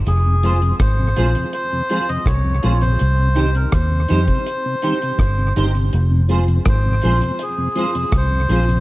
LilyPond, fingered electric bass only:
\new Staff \with { instrumentName = "Fingered electric bass" } { \clef bass \time 4/4 \key f \minor \tempo 4 = 82 f,,4 aes,,8 bes,,16 r4 r16 c,8 bes,,8 | c,4 ees,8 f,16 r4 r16 g,,8 g,,8 | f,,4 aes,,8 bes,,16 r4 r16 c,8 bes,,8 | }